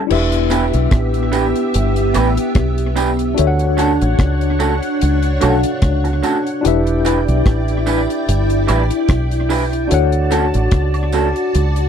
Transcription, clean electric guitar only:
0, 0, Header, 1, 3, 480
1, 0, Start_track
1, 0, Tempo, 817439
1, 59, Time_signature, 4, 2, 24, 8
1, 6981, End_track
2, 0, Start_track
2, 0, Title_t, "Clean electric guitar"
2, 0, Program_c, 0, 27
2, 294, Note_on_c, 0, 59, 93
2, 296, Note_on_c, 0, 62, 83
2, 300, Note_on_c, 0, 67, 92
2, 301, Note_on_c, 0, 71, 91
2, 372, Note_off_c, 0, 59, 0
2, 373, Note_off_c, 0, 62, 0
2, 375, Note_off_c, 0, 67, 0
2, 376, Note_off_c, 0, 71, 0
2, 773, Note_on_c, 0, 59, 83
2, 776, Note_on_c, 0, 62, 88
2, 780, Note_on_c, 0, 67, 97
2, 782, Note_on_c, 0, 71, 96
2, 852, Note_off_c, 0, 59, 0
2, 853, Note_off_c, 0, 62, 0
2, 855, Note_off_c, 0, 67, 0
2, 856, Note_off_c, 0, 71, 0
2, 1257, Note_on_c, 0, 59, 78
2, 1260, Note_on_c, 0, 62, 81
2, 1262, Note_on_c, 0, 67, 83
2, 1264, Note_on_c, 0, 71, 92
2, 1333, Note_off_c, 0, 59, 0
2, 1335, Note_off_c, 0, 62, 0
2, 1336, Note_off_c, 0, 67, 0
2, 1337, Note_off_c, 0, 71, 0
2, 1736, Note_on_c, 0, 59, 76
2, 1739, Note_on_c, 0, 62, 93
2, 1742, Note_on_c, 0, 67, 86
2, 1743, Note_on_c, 0, 71, 88
2, 1813, Note_off_c, 0, 59, 0
2, 1814, Note_off_c, 0, 62, 0
2, 1816, Note_off_c, 0, 67, 0
2, 1817, Note_off_c, 0, 71, 0
2, 2214, Note_on_c, 0, 57, 87
2, 2219, Note_on_c, 0, 61, 85
2, 2221, Note_on_c, 0, 66, 94
2, 2223, Note_on_c, 0, 69, 103
2, 2292, Note_off_c, 0, 57, 0
2, 2294, Note_off_c, 0, 61, 0
2, 2295, Note_off_c, 0, 66, 0
2, 2296, Note_off_c, 0, 69, 0
2, 2696, Note_on_c, 0, 57, 91
2, 2699, Note_on_c, 0, 61, 95
2, 2700, Note_on_c, 0, 66, 93
2, 2703, Note_on_c, 0, 69, 97
2, 2772, Note_off_c, 0, 57, 0
2, 2774, Note_off_c, 0, 61, 0
2, 2775, Note_off_c, 0, 66, 0
2, 2776, Note_off_c, 0, 69, 0
2, 3175, Note_on_c, 0, 57, 94
2, 3178, Note_on_c, 0, 61, 85
2, 3182, Note_on_c, 0, 66, 99
2, 3184, Note_on_c, 0, 69, 101
2, 3252, Note_off_c, 0, 57, 0
2, 3253, Note_off_c, 0, 61, 0
2, 3255, Note_off_c, 0, 66, 0
2, 3256, Note_off_c, 0, 69, 0
2, 3656, Note_on_c, 0, 57, 83
2, 3659, Note_on_c, 0, 61, 97
2, 3662, Note_on_c, 0, 66, 99
2, 3664, Note_on_c, 0, 69, 93
2, 3732, Note_off_c, 0, 57, 0
2, 3734, Note_off_c, 0, 61, 0
2, 3735, Note_off_c, 0, 66, 0
2, 3736, Note_off_c, 0, 69, 0
2, 4139, Note_on_c, 0, 55, 80
2, 4141, Note_on_c, 0, 62, 82
2, 4143, Note_on_c, 0, 64, 87
2, 4146, Note_on_c, 0, 71, 99
2, 4213, Note_off_c, 0, 55, 0
2, 4214, Note_off_c, 0, 62, 0
2, 4215, Note_off_c, 0, 64, 0
2, 4217, Note_off_c, 0, 71, 0
2, 4616, Note_on_c, 0, 55, 95
2, 4619, Note_on_c, 0, 62, 93
2, 4622, Note_on_c, 0, 64, 103
2, 4624, Note_on_c, 0, 71, 106
2, 4691, Note_off_c, 0, 55, 0
2, 4693, Note_off_c, 0, 62, 0
2, 4694, Note_off_c, 0, 64, 0
2, 4696, Note_off_c, 0, 71, 0
2, 5093, Note_on_c, 0, 55, 92
2, 5097, Note_on_c, 0, 62, 92
2, 5099, Note_on_c, 0, 64, 93
2, 5101, Note_on_c, 0, 71, 91
2, 5170, Note_off_c, 0, 55, 0
2, 5172, Note_off_c, 0, 62, 0
2, 5173, Note_off_c, 0, 64, 0
2, 5174, Note_off_c, 0, 71, 0
2, 5573, Note_on_c, 0, 55, 78
2, 5576, Note_on_c, 0, 62, 88
2, 5579, Note_on_c, 0, 64, 103
2, 5582, Note_on_c, 0, 71, 101
2, 5650, Note_off_c, 0, 55, 0
2, 5651, Note_off_c, 0, 62, 0
2, 5653, Note_off_c, 0, 64, 0
2, 5654, Note_off_c, 0, 71, 0
2, 6053, Note_on_c, 0, 57, 90
2, 6056, Note_on_c, 0, 61, 90
2, 6058, Note_on_c, 0, 66, 103
2, 6060, Note_on_c, 0, 69, 96
2, 6129, Note_off_c, 0, 57, 0
2, 6131, Note_off_c, 0, 61, 0
2, 6132, Note_off_c, 0, 66, 0
2, 6133, Note_off_c, 0, 69, 0
2, 6535, Note_on_c, 0, 57, 85
2, 6539, Note_on_c, 0, 61, 88
2, 6541, Note_on_c, 0, 66, 91
2, 6543, Note_on_c, 0, 69, 99
2, 6611, Note_off_c, 0, 57, 0
2, 6612, Note_off_c, 0, 61, 0
2, 6613, Note_off_c, 0, 66, 0
2, 6614, Note_off_c, 0, 69, 0
2, 6981, End_track
3, 0, Start_track
3, 0, Title_t, "Muted clean electric guitar strokes"
3, 3547, Note_on_c, 9, 29, 44
3, 3606, Note_off_c, 9, 29, 0
3, 6981, End_track
0, 0, End_of_file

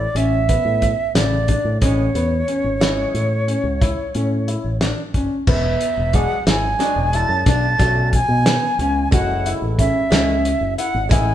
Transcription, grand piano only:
0, 0, Header, 1, 2, 480
1, 0, Start_track
1, 0, Key_signature, 3, "major"
1, 0, Tempo, 663717
1, 1315, Time_signature, 11, 3, 24, 8
1, 8205, End_track
2, 0, Start_track
2, 0, Title_t, "Grand piano"
2, 0, Program_c, 0, 0
2, 111, Note_on_c, 0, 61, 74
2, 238, Note_off_c, 0, 61, 0
2, 355, Note_on_c, 0, 59, 59
2, 608, Note_off_c, 0, 59, 0
2, 836, Note_on_c, 0, 49, 71
2, 962, Note_off_c, 0, 49, 0
2, 1075, Note_on_c, 0, 62, 66
2, 1202, Note_off_c, 0, 62, 0
2, 1315, Note_on_c, 0, 61, 71
2, 1442, Note_off_c, 0, 61, 0
2, 1556, Note_on_c, 0, 59, 63
2, 1682, Note_off_c, 0, 59, 0
2, 1795, Note_on_c, 0, 61, 58
2, 1922, Note_off_c, 0, 61, 0
2, 2031, Note_on_c, 0, 64, 69
2, 2285, Note_off_c, 0, 64, 0
2, 2514, Note_on_c, 0, 61, 60
2, 2641, Note_off_c, 0, 61, 0
2, 2756, Note_on_c, 0, 64, 74
2, 2883, Note_off_c, 0, 64, 0
2, 3001, Note_on_c, 0, 61, 59
2, 3126, Note_off_c, 0, 61, 0
2, 3237, Note_on_c, 0, 64, 65
2, 3364, Note_off_c, 0, 64, 0
2, 3480, Note_on_c, 0, 62, 69
2, 3606, Note_off_c, 0, 62, 0
2, 3720, Note_on_c, 0, 61, 63
2, 3846, Note_off_c, 0, 61, 0
2, 3962, Note_on_c, 0, 59, 78
2, 4214, Note_off_c, 0, 59, 0
2, 4442, Note_on_c, 0, 68, 70
2, 4568, Note_off_c, 0, 68, 0
2, 4679, Note_on_c, 0, 64, 78
2, 4806, Note_off_c, 0, 64, 0
2, 4922, Note_on_c, 0, 62, 70
2, 5047, Note_off_c, 0, 62, 0
2, 5163, Note_on_c, 0, 64, 70
2, 5288, Note_off_c, 0, 64, 0
2, 5403, Note_on_c, 0, 62, 85
2, 5528, Note_off_c, 0, 62, 0
2, 5644, Note_on_c, 0, 66, 66
2, 5895, Note_off_c, 0, 66, 0
2, 6119, Note_on_c, 0, 59, 79
2, 6245, Note_off_c, 0, 59, 0
2, 6357, Note_on_c, 0, 61, 73
2, 6483, Note_off_c, 0, 61, 0
2, 6602, Note_on_c, 0, 66, 78
2, 6727, Note_off_c, 0, 66, 0
2, 6843, Note_on_c, 0, 64, 71
2, 6967, Note_off_c, 0, 64, 0
2, 7077, Note_on_c, 0, 61, 66
2, 7202, Note_off_c, 0, 61, 0
2, 7317, Note_on_c, 0, 61, 79
2, 7569, Note_off_c, 0, 61, 0
2, 7797, Note_on_c, 0, 64, 69
2, 7922, Note_off_c, 0, 64, 0
2, 8040, Note_on_c, 0, 64, 91
2, 8164, Note_off_c, 0, 64, 0
2, 8205, End_track
0, 0, End_of_file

